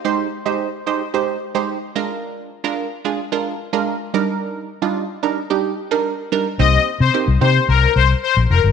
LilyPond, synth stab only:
\new Staff \with { instrumentName = "Synth stab" } { \time 4/4 \key c \minor \tempo 4 = 110 <aes ees' g' c''>8 r16 <aes ees' g' c''>8 r16 <aes ees' g' c''>16 r16 <aes ees' g' c''>8 r16 <aes ees' g' c''>8 r16 <aes d' f' bes'>8~ | <aes d' f' bes'>8 r16 <aes d' f' bes'>8 r16 <aes d' f' aes'>16 r16 <aes d' f' bes'>8 r16 <aes d' f' bes'>8 r16 <g d' ees' bes'>8~ | <g d' ees' bes'>8 r16 <g d' ees' f'>8 r16 <g d' ees' bes'>16 r16 <g d' ees' g'>8 r16 <g d' ees' bes'>8 r16 <g d' ees' bes'>16 r16 | <bes c' ees' g' c''>8 r8 <bes c' ees' g' c''>16 r16 <bes c' ees' g' c''>4~ <bes c' ees' g' c''>16 r4 r16 | }